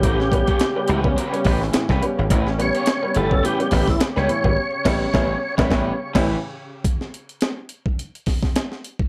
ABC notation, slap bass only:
X:1
M:4/4
L:1/16
Q:"Swing 16ths" 1/4=106
K:Amix
V:1 name="Slap bass" clef=bass
A,,,3 z3 C,,2 z2 A,,,2 z =C,, z ^G,,, | A,,,3 z3 G,,,2 z2 A,,,2 z C,, z ^G,,, | z2 A,,,2 A,,,2 z A,,, A,,,2 z A,,,2 z3 | z16 |]